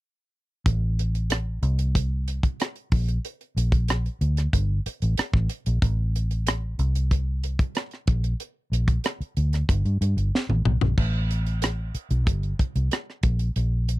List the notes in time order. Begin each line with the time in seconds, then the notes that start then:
0.66 A1, kick, closed hi-hat
0.99 closed hi-hat
1.15 closed hi-hat
1.30 cross-stick, closed hi-hat
1.63 C2, closed hi-hat
1.79 closed hi-hat
1.95 kick, closed hi-hat
2.28 closed hi-hat
2.43 kick, closed hi-hat
2.60 cross-stick, closed hi-hat
2.76 closed hi-hat
2.92 A#1, kick, open hi-hat
3.08 closed hi-hat
3.25 closed hi-hat
3.41 closed hi-hat
3.57 A#1, closed hi-hat
3.72 kick, closed hi-hat
3.88 cross-stick, closed hi-hat
4.06 closed hi-hat
4.21 D2, closed hi-hat
4.37 cross-stick, closed hi-hat
4.53 G1, kick, closed hi-hat
4.86 muted fingered electric bass stroke, closed hi-hat
5.02 A1, closed hi-hat
5.17 cross-stick, closed hi-hat
5.34 A1, kick, cross-stick
5.49 closed hi-hat
5.66 A#1, closed hi-hat
5.82 A1, kick, closed hi-hat
6.16 closed hi-hat
6.31 closed hi-hat
6.47 cross-stick, closed hi-hat
6.79 C2, closed hi-hat
6.95 closed hi-hat
7.11 kick, closed hi-hat
7.44 closed hi-hat
7.59 kick, closed hi-hat
7.75 cross-stick, closed hi-hat
7.91 cross-stick, closed hi-hat
8.07 A#1, kick, closed hi-hat
8.24 closed hi-hat
8.40 closed hi-hat
8.72 A#1, closed hi-hat
8.88 kick, closed hi-hat
9.04 cross-stick, closed hi-hat
9.20 muted fingered electric bass stroke, closed hi-hat
9.37 D2, closed hi-hat
9.53 cross-stick, closed hi-hat
9.69 G1, kick, closed hi-hat
9.85 G2, closed hi-hat
10.01 G2, closed hi-hat
10.17 G1, closed hi-hat
10.35 snare
10.49 A1, high tom
10.65 B1, mid tom
10.81 A#1, floor tom
10.98 A1, kick, crash
11.31 closed hi-hat
11.46 closed hi-hat
11.62 cross-stick, closed hi-hat
11.95 muted fingered electric bass stroke, closed hi-hat
12.10 B1, closed hi-hat
12.27 G1, kick, closed hi-hat
12.43 closed hi-hat
12.59 kick, closed hi-hat
12.76 C2, closed hi-hat
12.91 cross-stick, closed hi-hat
13.10 cross-stick
13.23 A#1, kick, closed hi-hat
13.39 closed hi-hat
13.56 A#1, closed hi-hat
13.89 closed hi-hat